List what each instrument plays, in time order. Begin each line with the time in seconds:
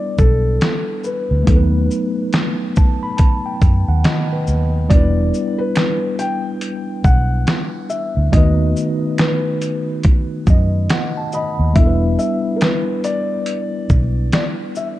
Already playing: tine electric piano G3 B3 D4 E4 B4, felt piano D5
0.18 fingered electric bass B1, felt piano A4, kick, shaker
0.61 snare, closed hi-hat
1.04 felt piano B4, shaker
1.31 fingered electric bass D2
1.43 tine electric piano A3 B3 D#4
1.47 fingered electric bass D#2, tine electric piano F#3 A4, kick, closed hi-hat
1.56 tine electric piano B4
1.91 shaker
2.33 snare, closed hi-hat
2.76 tine electric piano A5, kick, shaker
3.03 tine electric piano B5
3.17 tine electric piano A5, kick, closed hi-hat
3.46 tine electric piano G5
3.62 fingered electric bass F#2, kick, closed hi-hat, shaker
3.88 fingered electric bass D#2, tine electric piano F#5
4.04 fingered electric bass D#3, tine electric piano D#5, snare, closed hi-hat
4.33 tine electric piano B4
4.47 fingered electric bass D#2, shaker
4.89 fingered electric bass E1, tine electric piano G3 B3 D4, felt piano D5, kick, closed hi-hat
4.94 tine electric piano E4 B4
5.34 shaker
5.58 felt piano B4
5.76 finger snap, snare, closed hi-hat
6.19 felt piano G5, closed hi-hat, shaker
6.61 closed hi-hat
7.04 fingered electric bass B1, felt piano F#5, kick, shaker
7.47 finger snap, snare, closed hi-hat
7.90 felt piano E5, shaker
8.17 fingered electric bass D2
8.31 fingered electric bass D#2, tine electric piano D#3 A3 B3, felt piano D#5, kick, closed hi-hat
8.35 tine electric piano D#4 F#4 B4
8.77 shaker
9.18 felt piano B4, finger snap, snare, closed hi-hat
9.62 closed hi-hat, shaker
10.03 kick, closed hi-hat
10.47 fingered electric bass F#2, tine electric piano D#5, kick, shaker
10.90 tine electric piano F#5, finger snap, snare, closed hi-hat
11.17 tine electric piano A5
11.32 felt piano D#5, tine electric piano B5, shaker
11.59 fingered electric bass D#2
11.74 fingered electric bass E1, tine electric piano G3 B3 D4, felt piano E5, kick, closed hi-hat
11.79 tine electric piano E4 A4
11.87 tine electric piano B4
12.19 felt piano E5, shaker
12.56 felt piano A#4
12.61 felt piano B4, finger snap, snare, closed hi-hat
13.04 felt piano D5, closed hi-hat, shaker
13.46 closed hi-hat
13.90 fingered electric bass B1, kick, shaker
14.32 felt piano D5, finger snap, snare, closed hi-hat
14.75 felt piano E5, shaker